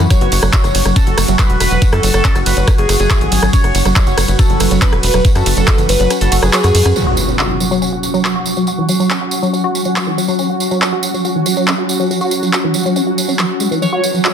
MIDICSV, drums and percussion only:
0, 0, Header, 1, 2, 480
1, 0, Start_track
1, 0, Tempo, 428571
1, 118, Time_signature, 4, 2, 24, 8
1, 16057, End_track
2, 0, Start_track
2, 0, Title_t, "Drums"
2, 2, Note_on_c, 9, 54, 37
2, 114, Note_off_c, 9, 54, 0
2, 117, Note_on_c, 9, 36, 113
2, 117, Note_on_c, 9, 37, 41
2, 117, Note_on_c, 9, 42, 65
2, 117, Note_on_c, 9, 51, 58
2, 117, Note_on_c, 9, 54, 58
2, 229, Note_off_c, 9, 36, 0
2, 229, Note_off_c, 9, 37, 0
2, 229, Note_off_c, 9, 42, 0
2, 229, Note_off_c, 9, 51, 0
2, 229, Note_off_c, 9, 54, 0
2, 238, Note_on_c, 9, 42, 39
2, 350, Note_off_c, 9, 42, 0
2, 358, Note_on_c, 9, 46, 99
2, 358, Note_on_c, 9, 51, 76
2, 361, Note_on_c, 9, 54, 101
2, 470, Note_off_c, 9, 46, 0
2, 470, Note_off_c, 9, 51, 0
2, 473, Note_off_c, 9, 54, 0
2, 475, Note_on_c, 9, 54, 45
2, 478, Note_on_c, 9, 37, 80
2, 478, Note_on_c, 9, 42, 40
2, 587, Note_off_c, 9, 54, 0
2, 590, Note_off_c, 9, 37, 0
2, 590, Note_off_c, 9, 42, 0
2, 593, Note_on_c, 9, 54, 51
2, 597, Note_on_c, 9, 36, 126
2, 598, Note_on_c, 9, 39, 113
2, 598, Note_on_c, 9, 42, 66
2, 598, Note_on_c, 9, 51, 55
2, 705, Note_off_c, 9, 54, 0
2, 709, Note_off_c, 9, 36, 0
2, 710, Note_off_c, 9, 39, 0
2, 710, Note_off_c, 9, 42, 0
2, 710, Note_off_c, 9, 51, 0
2, 717, Note_on_c, 9, 37, 43
2, 717, Note_on_c, 9, 42, 38
2, 725, Note_on_c, 9, 54, 39
2, 829, Note_off_c, 9, 37, 0
2, 829, Note_off_c, 9, 42, 0
2, 837, Note_off_c, 9, 54, 0
2, 837, Note_on_c, 9, 46, 108
2, 837, Note_on_c, 9, 51, 81
2, 837, Note_on_c, 9, 54, 96
2, 949, Note_off_c, 9, 46, 0
2, 949, Note_off_c, 9, 51, 0
2, 949, Note_off_c, 9, 54, 0
2, 957, Note_on_c, 9, 37, 43
2, 957, Note_on_c, 9, 42, 38
2, 958, Note_on_c, 9, 54, 41
2, 1069, Note_off_c, 9, 37, 0
2, 1069, Note_off_c, 9, 42, 0
2, 1070, Note_off_c, 9, 54, 0
2, 1076, Note_on_c, 9, 54, 57
2, 1077, Note_on_c, 9, 36, 122
2, 1077, Note_on_c, 9, 42, 63
2, 1077, Note_on_c, 9, 51, 59
2, 1188, Note_off_c, 9, 54, 0
2, 1189, Note_off_c, 9, 36, 0
2, 1189, Note_off_c, 9, 42, 0
2, 1189, Note_off_c, 9, 51, 0
2, 1197, Note_on_c, 9, 42, 40
2, 1309, Note_off_c, 9, 42, 0
2, 1317, Note_on_c, 9, 37, 85
2, 1317, Note_on_c, 9, 46, 108
2, 1317, Note_on_c, 9, 51, 80
2, 1319, Note_on_c, 9, 54, 99
2, 1429, Note_off_c, 9, 37, 0
2, 1429, Note_off_c, 9, 46, 0
2, 1429, Note_off_c, 9, 51, 0
2, 1431, Note_off_c, 9, 54, 0
2, 1437, Note_on_c, 9, 42, 39
2, 1439, Note_on_c, 9, 54, 39
2, 1549, Note_off_c, 9, 42, 0
2, 1551, Note_off_c, 9, 54, 0
2, 1557, Note_on_c, 9, 36, 126
2, 1557, Note_on_c, 9, 37, 40
2, 1557, Note_on_c, 9, 39, 117
2, 1557, Note_on_c, 9, 42, 68
2, 1557, Note_on_c, 9, 51, 59
2, 1560, Note_on_c, 9, 54, 53
2, 1669, Note_off_c, 9, 36, 0
2, 1669, Note_off_c, 9, 37, 0
2, 1669, Note_off_c, 9, 39, 0
2, 1669, Note_off_c, 9, 42, 0
2, 1669, Note_off_c, 9, 51, 0
2, 1672, Note_off_c, 9, 54, 0
2, 1677, Note_on_c, 9, 42, 40
2, 1789, Note_off_c, 9, 42, 0
2, 1797, Note_on_c, 9, 37, 45
2, 1797, Note_on_c, 9, 46, 109
2, 1797, Note_on_c, 9, 51, 84
2, 1800, Note_on_c, 9, 54, 97
2, 1909, Note_off_c, 9, 37, 0
2, 1909, Note_off_c, 9, 46, 0
2, 1909, Note_off_c, 9, 51, 0
2, 1912, Note_off_c, 9, 54, 0
2, 1917, Note_on_c, 9, 42, 39
2, 1917, Note_on_c, 9, 54, 42
2, 2029, Note_off_c, 9, 42, 0
2, 2029, Note_off_c, 9, 54, 0
2, 2037, Note_on_c, 9, 36, 114
2, 2037, Note_on_c, 9, 42, 68
2, 2037, Note_on_c, 9, 51, 61
2, 2040, Note_on_c, 9, 54, 55
2, 2149, Note_off_c, 9, 36, 0
2, 2149, Note_off_c, 9, 42, 0
2, 2149, Note_off_c, 9, 51, 0
2, 2152, Note_off_c, 9, 54, 0
2, 2157, Note_on_c, 9, 37, 85
2, 2157, Note_on_c, 9, 42, 39
2, 2269, Note_off_c, 9, 37, 0
2, 2269, Note_off_c, 9, 42, 0
2, 2277, Note_on_c, 9, 46, 101
2, 2277, Note_on_c, 9, 51, 78
2, 2285, Note_on_c, 9, 54, 89
2, 2389, Note_off_c, 9, 46, 0
2, 2389, Note_off_c, 9, 51, 0
2, 2397, Note_off_c, 9, 54, 0
2, 2397, Note_on_c, 9, 37, 42
2, 2397, Note_on_c, 9, 42, 41
2, 2397, Note_on_c, 9, 54, 43
2, 2509, Note_off_c, 9, 37, 0
2, 2509, Note_off_c, 9, 42, 0
2, 2509, Note_off_c, 9, 54, 0
2, 2515, Note_on_c, 9, 54, 50
2, 2517, Note_on_c, 9, 36, 112
2, 2517, Note_on_c, 9, 39, 114
2, 2517, Note_on_c, 9, 42, 66
2, 2517, Note_on_c, 9, 51, 61
2, 2627, Note_off_c, 9, 54, 0
2, 2629, Note_off_c, 9, 36, 0
2, 2629, Note_off_c, 9, 39, 0
2, 2629, Note_off_c, 9, 42, 0
2, 2629, Note_off_c, 9, 51, 0
2, 2637, Note_on_c, 9, 37, 44
2, 2637, Note_on_c, 9, 42, 41
2, 2638, Note_on_c, 9, 54, 36
2, 2749, Note_off_c, 9, 37, 0
2, 2749, Note_off_c, 9, 42, 0
2, 2750, Note_off_c, 9, 54, 0
2, 2757, Note_on_c, 9, 46, 108
2, 2757, Note_on_c, 9, 51, 85
2, 2758, Note_on_c, 9, 54, 89
2, 2867, Note_off_c, 9, 54, 0
2, 2867, Note_on_c, 9, 54, 39
2, 2869, Note_off_c, 9, 46, 0
2, 2869, Note_off_c, 9, 51, 0
2, 2877, Note_on_c, 9, 42, 40
2, 2979, Note_off_c, 9, 54, 0
2, 2989, Note_off_c, 9, 42, 0
2, 2997, Note_on_c, 9, 36, 118
2, 2997, Note_on_c, 9, 37, 83
2, 2997, Note_on_c, 9, 42, 63
2, 2997, Note_on_c, 9, 51, 60
2, 3004, Note_on_c, 9, 54, 57
2, 3109, Note_off_c, 9, 36, 0
2, 3109, Note_off_c, 9, 37, 0
2, 3109, Note_off_c, 9, 42, 0
2, 3109, Note_off_c, 9, 51, 0
2, 3116, Note_off_c, 9, 54, 0
2, 3117, Note_on_c, 9, 42, 40
2, 3229, Note_off_c, 9, 42, 0
2, 3237, Note_on_c, 9, 37, 40
2, 3237, Note_on_c, 9, 46, 104
2, 3237, Note_on_c, 9, 51, 85
2, 3241, Note_on_c, 9, 54, 92
2, 3349, Note_off_c, 9, 37, 0
2, 3349, Note_off_c, 9, 46, 0
2, 3349, Note_off_c, 9, 51, 0
2, 3353, Note_off_c, 9, 54, 0
2, 3355, Note_on_c, 9, 54, 38
2, 3357, Note_on_c, 9, 42, 39
2, 3467, Note_off_c, 9, 54, 0
2, 3469, Note_off_c, 9, 42, 0
2, 3472, Note_on_c, 9, 54, 49
2, 3477, Note_on_c, 9, 36, 120
2, 3477, Note_on_c, 9, 37, 44
2, 3477, Note_on_c, 9, 39, 115
2, 3477, Note_on_c, 9, 42, 68
2, 3477, Note_on_c, 9, 51, 57
2, 3584, Note_off_c, 9, 54, 0
2, 3589, Note_off_c, 9, 36, 0
2, 3589, Note_off_c, 9, 37, 0
2, 3589, Note_off_c, 9, 39, 0
2, 3589, Note_off_c, 9, 42, 0
2, 3589, Note_off_c, 9, 51, 0
2, 3597, Note_on_c, 9, 42, 41
2, 3709, Note_off_c, 9, 42, 0
2, 3717, Note_on_c, 9, 46, 109
2, 3717, Note_on_c, 9, 51, 84
2, 3718, Note_on_c, 9, 54, 94
2, 3829, Note_off_c, 9, 46, 0
2, 3829, Note_off_c, 9, 51, 0
2, 3830, Note_off_c, 9, 54, 0
2, 3837, Note_on_c, 9, 37, 84
2, 3837, Note_on_c, 9, 42, 41
2, 3846, Note_on_c, 9, 54, 37
2, 3949, Note_off_c, 9, 37, 0
2, 3949, Note_off_c, 9, 42, 0
2, 3956, Note_off_c, 9, 54, 0
2, 3956, Note_on_c, 9, 54, 55
2, 3957, Note_on_c, 9, 36, 106
2, 3957, Note_on_c, 9, 42, 68
2, 3957, Note_on_c, 9, 51, 64
2, 4068, Note_off_c, 9, 54, 0
2, 4069, Note_off_c, 9, 36, 0
2, 4069, Note_off_c, 9, 42, 0
2, 4069, Note_off_c, 9, 51, 0
2, 4077, Note_on_c, 9, 37, 41
2, 4077, Note_on_c, 9, 42, 41
2, 4189, Note_off_c, 9, 37, 0
2, 4189, Note_off_c, 9, 42, 0
2, 4197, Note_on_c, 9, 46, 96
2, 4197, Note_on_c, 9, 51, 82
2, 4201, Note_on_c, 9, 54, 81
2, 4309, Note_off_c, 9, 46, 0
2, 4309, Note_off_c, 9, 51, 0
2, 4313, Note_off_c, 9, 54, 0
2, 4317, Note_on_c, 9, 37, 41
2, 4317, Note_on_c, 9, 42, 42
2, 4322, Note_on_c, 9, 54, 43
2, 4429, Note_off_c, 9, 37, 0
2, 4429, Note_off_c, 9, 42, 0
2, 4434, Note_off_c, 9, 54, 0
2, 4437, Note_on_c, 9, 36, 120
2, 4437, Note_on_c, 9, 39, 120
2, 4437, Note_on_c, 9, 42, 67
2, 4437, Note_on_c, 9, 51, 60
2, 4444, Note_on_c, 9, 54, 50
2, 4549, Note_off_c, 9, 36, 0
2, 4549, Note_off_c, 9, 39, 0
2, 4549, Note_off_c, 9, 42, 0
2, 4549, Note_off_c, 9, 51, 0
2, 4555, Note_off_c, 9, 54, 0
2, 4555, Note_on_c, 9, 54, 33
2, 4557, Note_on_c, 9, 42, 42
2, 4667, Note_off_c, 9, 54, 0
2, 4669, Note_off_c, 9, 42, 0
2, 4677, Note_on_c, 9, 37, 84
2, 4677, Note_on_c, 9, 46, 101
2, 4677, Note_on_c, 9, 51, 85
2, 4677, Note_on_c, 9, 54, 91
2, 4789, Note_off_c, 9, 37, 0
2, 4789, Note_off_c, 9, 46, 0
2, 4789, Note_off_c, 9, 51, 0
2, 4789, Note_off_c, 9, 54, 0
2, 4797, Note_on_c, 9, 42, 41
2, 4800, Note_on_c, 9, 54, 37
2, 4909, Note_off_c, 9, 42, 0
2, 4912, Note_off_c, 9, 54, 0
2, 4917, Note_on_c, 9, 36, 113
2, 4917, Note_on_c, 9, 37, 42
2, 4917, Note_on_c, 9, 42, 70
2, 4917, Note_on_c, 9, 51, 61
2, 4924, Note_on_c, 9, 54, 57
2, 5029, Note_off_c, 9, 36, 0
2, 5029, Note_off_c, 9, 37, 0
2, 5029, Note_off_c, 9, 42, 0
2, 5029, Note_off_c, 9, 51, 0
2, 5036, Note_off_c, 9, 54, 0
2, 5037, Note_on_c, 9, 42, 42
2, 5149, Note_off_c, 9, 42, 0
2, 5152, Note_on_c, 9, 54, 87
2, 5157, Note_on_c, 9, 37, 42
2, 5157, Note_on_c, 9, 46, 103
2, 5157, Note_on_c, 9, 51, 87
2, 5264, Note_off_c, 9, 54, 0
2, 5269, Note_off_c, 9, 37, 0
2, 5269, Note_off_c, 9, 46, 0
2, 5269, Note_off_c, 9, 51, 0
2, 5276, Note_on_c, 9, 54, 41
2, 5277, Note_on_c, 9, 42, 42
2, 5388, Note_off_c, 9, 54, 0
2, 5389, Note_off_c, 9, 42, 0
2, 5395, Note_on_c, 9, 54, 54
2, 5397, Note_on_c, 9, 36, 117
2, 5397, Note_on_c, 9, 39, 123
2, 5397, Note_on_c, 9, 42, 69
2, 5397, Note_on_c, 9, 51, 61
2, 5507, Note_off_c, 9, 54, 0
2, 5509, Note_off_c, 9, 36, 0
2, 5509, Note_off_c, 9, 39, 0
2, 5509, Note_off_c, 9, 42, 0
2, 5509, Note_off_c, 9, 51, 0
2, 5517, Note_on_c, 9, 37, 82
2, 5517, Note_on_c, 9, 42, 43
2, 5629, Note_off_c, 9, 37, 0
2, 5629, Note_off_c, 9, 42, 0
2, 5633, Note_on_c, 9, 54, 85
2, 5637, Note_on_c, 9, 46, 105
2, 5637, Note_on_c, 9, 51, 88
2, 5745, Note_off_c, 9, 54, 0
2, 5749, Note_off_c, 9, 46, 0
2, 5749, Note_off_c, 9, 51, 0
2, 5757, Note_on_c, 9, 37, 42
2, 5757, Note_on_c, 9, 42, 41
2, 5757, Note_on_c, 9, 54, 35
2, 5869, Note_off_c, 9, 37, 0
2, 5869, Note_off_c, 9, 42, 0
2, 5869, Note_off_c, 9, 54, 0
2, 5877, Note_on_c, 9, 36, 115
2, 5877, Note_on_c, 9, 42, 70
2, 5877, Note_on_c, 9, 51, 59
2, 5888, Note_on_c, 9, 54, 52
2, 5989, Note_off_c, 9, 36, 0
2, 5989, Note_off_c, 9, 42, 0
2, 5989, Note_off_c, 9, 51, 0
2, 5995, Note_off_c, 9, 54, 0
2, 5995, Note_on_c, 9, 54, 40
2, 5997, Note_on_c, 9, 37, 41
2, 5997, Note_on_c, 9, 42, 41
2, 6107, Note_off_c, 9, 54, 0
2, 6109, Note_off_c, 9, 37, 0
2, 6109, Note_off_c, 9, 42, 0
2, 6117, Note_on_c, 9, 46, 101
2, 6117, Note_on_c, 9, 51, 84
2, 6119, Note_on_c, 9, 54, 90
2, 6229, Note_off_c, 9, 46, 0
2, 6229, Note_off_c, 9, 51, 0
2, 6231, Note_off_c, 9, 54, 0
2, 6237, Note_on_c, 9, 42, 43
2, 6240, Note_on_c, 9, 54, 38
2, 6349, Note_off_c, 9, 42, 0
2, 6350, Note_off_c, 9, 54, 0
2, 6350, Note_on_c, 9, 54, 49
2, 6357, Note_on_c, 9, 36, 116
2, 6357, Note_on_c, 9, 37, 80
2, 6357, Note_on_c, 9, 39, 121
2, 6357, Note_on_c, 9, 42, 70
2, 6357, Note_on_c, 9, 51, 58
2, 6462, Note_off_c, 9, 54, 0
2, 6469, Note_off_c, 9, 36, 0
2, 6469, Note_off_c, 9, 37, 0
2, 6469, Note_off_c, 9, 39, 0
2, 6469, Note_off_c, 9, 42, 0
2, 6469, Note_off_c, 9, 51, 0
2, 6475, Note_on_c, 9, 54, 38
2, 6477, Note_on_c, 9, 42, 42
2, 6587, Note_off_c, 9, 54, 0
2, 6589, Note_off_c, 9, 42, 0
2, 6597, Note_on_c, 9, 46, 105
2, 6597, Note_on_c, 9, 51, 86
2, 6602, Note_on_c, 9, 54, 83
2, 6709, Note_off_c, 9, 46, 0
2, 6709, Note_off_c, 9, 51, 0
2, 6714, Note_off_c, 9, 54, 0
2, 6717, Note_on_c, 9, 42, 43
2, 6719, Note_on_c, 9, 54, 36
2, 6829, Note_off_c, 9, 42, 0
2, 6831, Note_off_c, 9, 54, 0
2, 6837, Note_on_c, 9, 37, 41
2, 6837, Note_on_c, 9, 42, 71
2, 6837, Note_on_c, 9, 51, 60
2, 6838, Note_on_c, 9, 54, 49
2, 6949, Note_off_c, 9, 37, 0
2, 6949, Note_off_c, 9, 42, 0
2, 6949, Note_off_c, 9, 51, 0
2, 6950, Note_off_c, 9, 54, 0
2, 6957, Note_on_c, 9, 42, 42
2, 6959, Note_on_c, 9, 54, 37
2, 7069, Note_off_c, 9, 42, 0
2, 7071, Note_off_c, 9, 54, 0
2, 7077, Note_on_c, 9, 46, 100
2, 7077, Note_on_c, 9, 51, 87
2, 7079, Note_on_c, 9, 54, 93
2, 7189, Note_off_c, 9, 46, 0
2, 7189, Note_off_c, 9, 51, 0
2, 7191, Note_off_c, 9, 54, 0
2, 7197, Note_on_c, 9, 37, 81
2, 7197, Note_on_c, 9, 42, 44
2, 7201, Note_on_c, 9, 54, 42
2, 7309, Note_off_c, 9, 37, 0
2, 7309, Note_off_c, 9, 42, 0
2, 7313, Note_off_c, 9, 54, 0
2, 7317, Note_on_c, 9, 39, 118
2, 7317, Note_on_c, 9, 42, 73
2, 7317, Note_on_c, 9, 51, 60
2, 7324, Note_on_c, 9, 54, 46
2, 7429, Note_off_c, 9, 39, 0
2, 7429, Note_off_c, 9, 42, 0
2, 7429, Note_off_c, 9, 51, 0
2, 7431, Note_off_c, 9, 54, 0
2, 7431, Note_on_c, 9, 54, 38
2, 7437, Note_on_c, 9, 37, 40
2, 7437, Note_on_c, 9, 42, 43
2, 7543, Note_off_c, 9, 54, 0
2, 7549, Note_off_c, 9, 37, 0
2, 7549, Note_off_c, 9, 42, 0
2, 7557, Note_on_c, 9, 46, 109
2, 7557, Note_on_c, 9, 51, 85
2, 7564, Note_on_c, 9, 54, 83
2, 7669, Note_off_c, 9, 46, 0
2, 7669, Note_off_c, 9, 51, 0
2, 7676, Note_off_c, 9, 54, 0
2, 7677, Note_on_c, 9, 37, 40
2, 7677, Note_on_c, 9, 42, 43
2, 7678, Note_on_c, 9, 54, 37
2, 7789, Note_off_c, 9, 37, 0
2, 7789, Note_off_c, 9, 42, 0
2, 7790, Note_off_c, 9, 54, 0
2, 7794, Note_on_c, 9, 54, 53
2, 7906, Note_off_c, 9, 54, 0
2, 8031, Note_on_c, 9, 54, 94
2, 8143, Note_off_c, 9, 54, 0
2, 8159, Note_on_c, 9, 54, 40
2, 8271, Note_off_c, 9, 54, 0
2, 8272, Note_on_c, 9, 54, 46
2, 8277, Note_on_c, 9, 39, 112
2, 8384, Note_off_c, 9, 54, 0
2, 8389, Note_off_c, 9, 39, 0
2, 8516, Note_on_c, 9, 54, 89
2, 8628, Note_off_c, 9, 54, 0
2, 8643, Note_on_c, 9, 54, 36
2, 8755, Note_off_c, 9, 54, 0
2, 8759, Note_on_c, 9, 54, 53
2, 8871, Note_off_c, 9, 54, 0
2, 8995, Note_on_c, 9, 54, 89
2, 9107, Note_off_c, 9, 54, 0
2, 9119, Note_on_c, 9, 54, 37
2, 9231, Note_off_c, 9, 54, 0
2, 9237, Note_on_c, 9, 39, 116
2, 9245, Note_on_c, 9, 54, 55
2, 9349, Note_off_c, 9, 39, 0
2, 9357, Note_off_c, 9, 54, 0
2, 9471, Note_on_c, 9, 54, 92
2, 9583, Note_off_c, 9, 54, 0
2, 9594, Note_on_c, 9, 54, 33
2, 9706, Note_off_c, 9, 54, 0
2, 9710, Note_on_c, 9, 54, 58
2, 9822, Note_off_c, 9, 54, 0
2, 9952, Note_on_c, 9, 54, 89
2, 10064, Note_off_c, 9, 54, 0
2, 10082, Note_on_c, 9, 54, 43
2, 10194, Note_off_c, 9, 54, 0
2, 10194, Note_on_c, 9, 54, 51
2, 10197, Note_on_c, 9, 39, 123
2, 10306, Note_off_c, 9, 54, 0
2, 10309, Note_off_c, 9, 39, 0
2, 10431, Note_on_c, 9, 54, 98
2, 10543, Note_off_c, 9, 54, 0
2, 10563, Note_on_c, 9, 54, 41
2, 10675, Note_off_c, 9, 54, 0
2, 10680, Note_on_c, 9, 54, 47
2, 10792, Note_off_c, 9, 54, 0
2, 10920, Note_on_c, 9, 54, 88
2, 11032, Note_off_c, 9, 54, 0
2, 11034, Note_on_c, 9, 54, 44
2, 11146, Note_off_c, 9, 54, 0
2, 11150, Note_on_c, 9, 54, 52
2, 11157, Note_on_c, 9, 39, 125
2, 11262, Note_off_c, 9, 54, 0
2, 11269, Note_off_c, 9, 39, 0
2, 11404, Note_on_c, 9, 54, 90
2, 11516, Note_off_c, 9, 54, 0
2, 11518, Note_on_c, 9, 54, 39
2, 11630, Note_off_c, 9, 54, 0
2, 11634, Note_on_c, 9, 54, 52
2, 11746, Note_off_c, 9, 54, 0
2, 11875, Note_on_c, 9, 54, 89
2, 11987, Note_off_c, 9, 54, 0
2, 11998, Note_on_c, 9, 54, 40
2, 12110, Note_off_c, 9, 54, 0
2, 12117, Note_on_c, 9, 39, 115
2, 12125, Note_on_c, 9, 54, 54
2, 12229, Note_off_c, 9, 39, 0
2, 12237, Note_off_c, 9, 54, 0
2, 12352, Note_on_c, 9, 54, 105
2, 12464, Note_off_c, 9, 54, 0
2, 12480, Note_on_c, 9, 54, 41
2, 12592, Note_off_c, 9, 54, 0
2, 12597, Note_on_c, 9, 54, 48
2, 12709, Note_off_c, 9, 54, 0
2, 12834, Note_on_c, 9, 54, 94
2, 12946, Note_off_c, 9, 54, 0
2, 12956, Note_on_c, 9, 54, 42
2, 13068, Note_off_c, 9, 54, 0
2, 13075, Note_on_c, 9, 54, 51
2, 13077, Note_on_c, 9, 39, 119
2, 13187, Note_off_c, 9, 54, 0
2, 13189, Note_off_c, 9, 39, 0
2, 13317, Note_on_c, 9, 54, 99
2, 13429, Note_off_c, 9, 54, 0
2, 13445, Note_on_c, 9, 54, 36
2, 13557, Note_off_c, 9, 54, 0
2, 13562, Note_on_c, 9, 54, 57
2, 13674, Note_off_c, 9, 54, 0
2, 13675, Note_on_c, 9, 54, 37
2, 13787, Note_off_c, 9, 54, 0
2, 13789, Note_on_c, 9, 54, 92
2, 13901, Note_off_c, 9, 54, 0
2, 13919, Note_on_c, 9, 54, 40
2, 14031, Note_off_c, 9, 54, 0
2, 14037, Note_on_c, 9, 39, 109
2, 14040, Note_on_c, 9, 54, 53
2, 14149, Note_off_c, 9, 39, 0
2, 14152, Note_off_c, 9, 54, 0
2, 14268, Note_on_c, 9, 54, 92
2, 14380, Note_off_c, 9, 54, 0
2, 14403, Note_on_c, 9, 54, 36
2, 14515, Note_off_c, 9, 54, 0
2, 14515, Note_on_c, 9, 54, 58
2, 14627, Note_off_c, 9, 54, 0
2, 14762, Note_on_c, 9, 54, 97
2, 14874, Note_off_c, 9, 54, 0
2, 14883, Note_on_c, 9, 54, 40
2, 14992, Note_off_c, 9, 54, 0
2, 14992, Note_on_c, 9, 54, 56
2, 14997, Note_on_c, 9, 39, 110
2, 15104, Note_off_c, 9, 54, 0
2, 15109, Note_off_c, 9, 39, 0
2, 15232, Note_on_c, 9, 54, 93
2, 15344, Note_off_c, 9, 54, 0
2, 15365, Note_on_c, 9, 54, 40
2, 15477, Note_off_c, 9, 54, 0
2, 15481, Note_on_c, 9, 54, 56
2, 15593, Note_off_c, 9, 54, 0
2, 15720, Note_on_c, 9, 54, 92
2, 15832, Note_off_c, 9, 54, 0
2, 15845, Note_on_c, 9, 54, 35
2, 15957, Note_off_c, 9, 54, 0
2, 15957, Note_on_c, 9, 39, 108
2, 15961, Note_on_c, 9, 54, 46
2, 16057, Note_off_c, 9, 39, 0
2, 16057, Note_off_c, 9, 54, 0
2, 16057, End_track
0, 0, End_of_file